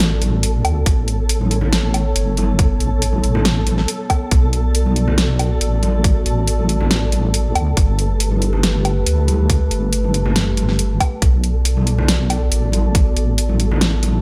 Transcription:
0.00 0.63 A1 medium
0.00 7.73 B3 medium
0.00 0.83 F#4 medium
0.00 11.21 A4 medium
0.00 0.83 D5 medium
0.21 closed hi-hat medium
0.21 high conga medium
0.43 closed hi-hat medium
0.65 0.85 D2 medium
0.65 closed hi-hat medium
0.65 low woodblock medium
0.86 2.14 A1 medium
0.86 4.28 A4 medium
0.86 4.28 C#5 medium
0.86 kick loud
0.86 closed hi-hat medium
1.08 closed hi-hat medium
1.29 closed hi-hat medium
1.41 high conga medium
1.51 closed hi-hat medium
1.61 low conga medium
1.73 snare loud
1.73 closed hi-hat medium
1.94 closed hi-hat medium
1.94 low woodblock soft
2.16 2.79 G1 medium
2.16 closed hi-hat medium
2.37 closed hi-hat soft
2.37 high conga medium
2.59 kick loud
2.59 closed hi-hat medium
2.80 3.22 A1 medium
2.80 closed hi-hat soft
3.02 closed hi-hat medium
3.13 high conga medium
3.24 3.87 A1 loud
3.24 closed hi-hat medium
3.35 low conga medium
3.45 snare loud
3.45 closed hi-hat medium
3.67 closed hi-hat soft
3.67 high conga medium
3.78 snare soft
3.88 closed hi-hat medium
4.10 kick medium
4.10 closed hi-hat medium
4.10 low woodblock medium
4.31 5.59 B1 medium
4.31 7.74 F#4 medium
4.31 7.73 D5 medium
4.31 kick loud
4.31 closed hi-hat medium
4.53 closed hi-hat soft
4.75 closed hi-hat medium
4.86 high conga medium
4.96 closed hi-hat soft
5.08 low conga medium
5.18 snare loud
5.18 closed hi-hat medium
5.39 closed hi-hat soft
5.39 low woodblock soft
5.61 6.24 A1 medium
5.61 closed hi-hat medium
5.83 closed hi-hat soft
5.83 high conga medium
6.04 kick loud
6.04 closed hi-hat medium
6.26 7.54 A1 medium
6.26 closed hi-hat soft
6.47 closed hi-hat medium
6.59 high conga medium
6.69 closed hi-hat soft
6.80 low conga medium
6.91 snare loud
6.91 closed hi-hat medium
7.12 closed hi-hat soft
7.12 high conga medium
7.34 closed hi-hat medium
7.55 7.75 D2 loud
7.55 closed hi-hat soft
7.55 low woodblock medium
7.77 9.05 G1 loud
7.77 11.19 A3 medium
7.77 11.19 G4 medium
7.77 11.19 B4 medium
7.77 kick loud
7.77 closed hi-hat medium
7.99 closed hi-hat medium
8.20 closed hi-hat medium
8.31 high conga medium
8.42 closed hi-hat soft
8.53 low conga medium
8.63 snare loud
8.63 closed hi-hat medium
8.85 closed hi-hat soft
8.85 low woodblock medium
9.06 9.70 D2 medium
9.06 closed hi-hat medium
9.28 closed hi-hat medium
9.28 high conga medium
9.50 kick loud
9.50 closed hi-hat medium
9.71 10.99 G1 loud
9.71 closed hi-hat medium
9.93 closed hi-hat medium
10.04 high conga medium
10.14 closed hi-hat medium
10.26 low conga medium
10.36 snare loud
10.36 closed hi-hat medium
10.57 closed hi-hat medium
10.57 high conga medium
10.69 snare soft
10.79 closed hi-hat medium
11.00 kick medium
11.00 closed hi-hat medium
11.00 low woodblock medium
11.22 12.50 B1 loud
11.22 14.22 B3 medium
11.22 14.22 F#4 medium
11.22 14.22 A4 medium
11.22 14.22 D5 medium
11.22 kick loud
11.22 closed hi-hat medium
11.44 closed hi-hat medium
11.65 closed hi-hat medium
11.77 high conga medium
11.87 closed hi-hat medium
11.98 low conga medium
12.08 snare loud
12.08 closed hi-hat medium
12.30 closed hi-hat medium
12.30 low woodblock medium
12.52 13.15 A1 loud
12.52 closed hi-hat medium
12.72 closed hi-hat medium
12.72 high conga medium
12.95 kick loud
12.95 closed hi-hat medium
13.16 14.22 A1 medium
13.16 closed hi-hat medium
13.38 closed hi-hat medium
13.49 high conga medium
13.60 closed hi-hat medium
13.71 low conga loud
13.81 snare loud
13.81 closed hi-hat medium
14.03 closed hi-hat medium
14.03 high conga medium

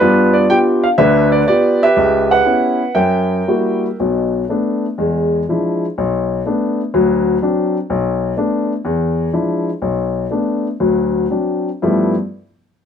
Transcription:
0.00 0.43 G2 medium
0.00 0.43 B3 medium
0.00 0.94 D4 medium
0.00 0.48 F4 medium
0.00 0.34 B4 medium
0.33 0.49 D5 medium
0.49 0.84 B3 soft
0.49 0.84 F4 medium
0.49 0.85 G4 medium
0.49 0.57 G5 medium
0.84 0.89 F5 medium
0.98 1.41 D2 medium
0.98 1.41 D3 medium
0.98 1.83 B4 medium
0.98 1.28 E5 loud
1.32 1.46 D5 medium
1.48 1.83 B3 medium
1.48 1.83 F4 soft
1.48 1.83 G4 medium
1.48 1.82 D5 medium
1.83 2.77 G4 medium
1.83 2.30 B4 medium
1.83 2.32 E5 loud
1.97 2.39 C#2 medium
2.31 2.92 B4 medium
2.31 2.98 F#5 medium
2.45 2.81 B3 soft
2.45 2.81 C#4 soft
2.45 2.81 E4 medium
2.95 3.41 F#2 medium
2.95 3.95 A#4 medium
2.95 3.95 E5 medium
2.95 3.79 G5 medium
3.48 3.85 G3 soft
3.48 3.85 A#3 soft
3.48 3.86 E4 soft
3.48 3.85 F#4 soft
4.00 4.43 B1 medium
4.00 4.43 B2 medium
4.49 4.85 A3 soft
4.49 4.85 B3 soft
4.49 4.85 D4 medium
4.98 5.41 E2 medium
4.98 5.42 G#3 medium
5.49 5.84 F3 soft
5.49 5.84 G#3 soft
5.49 5.84 D4 soft
5.49 5.85 E4 soft
5.98 6.40 B1 medium
6.46 6.80 A3 soft
6.46 6.80 B3 soft
6.46 6.81 D4 soft
6.94 7.35 D2 medium
6.94 7.36 F#3 medium
7.42 7.76 F#3 soft
7.42 7.76 C4 soft
7.42 7.77 D4 medium
7.90 8.32 B1 medium
8.37 8.72 A3 soft
8.37 8.72 B3 soft
8.37 8.72 D4 medium
8.85 9.27 E2 medium
9.33 9.68 F3 soft
9.33 9.69 G#3 soft
9.33 9.69 D4 soft
9.33 9.69 E4 soft
9.82 10.24 B1 medium
10.31 10.66 A3 soft
10.31 10.66 B3 soft
10.31 10.66 D4 soft
10.80 11.24 D2 medium
10.80 11.24 F#3 medium
11.30 11.68 F#3 soft
11.30 11.68 C4 soft
11.30 11.68 D4 soft
11.82 12.13 G2 medium
11.82 12.13 F3 soft
11.82 12.14 A3 medium
11.82 12.14 B3 soft
11.82 12.14 E4 medium

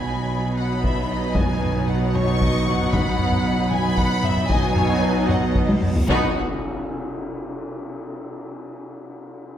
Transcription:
0.00 4.46 B1 medium
0.00 4.46 B2 medium
0.00 4.47 B2 medium
0.00 4.46 F#3 medium
0.00 4.46 B3 medium
0.00 4.46 D#4 medium
0.00 0.54 G#5 medium
0.00 0.56 B5 medium
0.57 0.84 F#5 medium
0.57 1.34 B5 medium
0.84 1.10 E5 medium
0.84 taiko medium
1.11 1.37 D#5 medium
1.35 2.16 B4 medium
1.35 1.89 G#5 medium
1.35 taiko loud
1.62 taiko low-mid medium
1.75 taiko low-mid soft
1.89 2.15 F#5 medium
2.15 2.41 C#5 medium
2.15 2.94 C#6 loud
2.15 taiko low-mid medium
2.41 2.67 D#5 medium
2.41 taiko medium
2.67 3.70 F#5 medium
2.67 taiko low-mid medium
2.80 taiko low-mid soft
2.93 3.72 B5 medium
2.93 taiko loud
3.19 taiko low-mid medium
3.32 taiko low-mid medium
3.71 3.98 G#5 medium
3.71 4.49 B5 loud
3.71 taiko low-mid medium
3.97 4.24 F#5 medium
3.97 taiko medium
4.23 4.50 E5 medium
4.23 taiko low-mid medium
4.36 taiko low-mid soft
4.49 5.87 B1 medium
4.49 5.87 B2 medium
4.49 5.80 B2 medium
4.49 5.81 F#3 medium
4.49 5.86 F#3 medium
4.49 5.80 B3 medium
4.49 5.80 D#4 medium
4.49 5.86 D#4 medium
4.49 4.76 D#5 medium
4.49 5.30 G#5 loud
4.49 taiko loud
4.49 reverse cymbal medium
4.75 5.02 C#5 medium
4.75 taiko low-mid medium
4.89 taiko low-mid medium
5.02 5.29 B4 medium
5.28 5.69 D#5 medium
5.28 5.57 F#5 medium
5.28 taiko low-mid medium
5.55 taiko medium
5.69 taiko high medium
5.83 taiko low-mid medium
5.96 taiko low medium
6.09 6.39 B1 medium
6.09 6.39 B2 medium
6.09 6.31 B2 medium
6.09 6.31 F#3 medium
6.09 6.31 B3 medium
6.09 6.39 B3 medium
6.09 6.32 D#4 medium
6.09 6.39 D#4 medium
6.09 6.39 F#4 medium
6.09 6.39 F#5 medium
6.09 6.40 B5 medium
6.09 taiko loud
6.09 tam-tam medium
6.09 impact medium

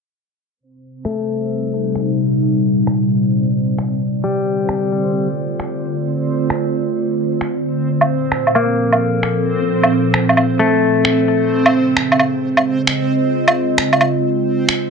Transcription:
0.58 4.23 C3 medium
0.58 14.90 C4 medium
0.58 14.90 C5 medium
0.96 4.23 G3 medium
1.05 2.09 A3 soft
1.05 finger snap medium
1.33 4.23 D#4 medium
1.65 4.23 A#2 medium
1.95 finger snap medium
2.25 11.51 D5 medium
2.87 finger snap medium
3.78 finger snap loud
4.24 7.88 D3 medium
4.24 5.27 G3 medium
4.60 7.87 A3 medium
4.69 finger snap loud
4.74 8.96 F4 medium
4.83 14.90 C4 medium
5.60 finger snap loud
6.50 finger snap loud
7.41 finger snap loud
7.87 11.50 A#2 medium
8.01 low woodblock medium
8.11 11.50 F3 medium
8.32 finger snap loud
8.36 11.51 A4 medium
8.47 low woodblock soft
8.55 9.59 A#3 medium
8.55 low woodblock soft
8.92 low woodblock soft
9.23 finger snap medium
9.83 low woodblock medium
10.14 finger snap medium
10.29 low woodblock soft
10.37 low woodblock soft
10.59 11.63 A3 medium
11.05 finger snap loud
11.51 14.90 C#3 medium
11.66 low woodblock medium
11.92 14.90 G#3 medium
11.97 finger snap medium
12.12 low woodblock medium
12.19 low woodblock soft
12.23 14.90 D#5 medium
12.57 low woodblock soft
12.77 14.90 F4 medium
12.87 finger snap medium
13.48 low woodblock medium
13.78 finger snap medium
13.93 low woodblock medium
14.01 low woodblock soft
14.69 finger snap loud

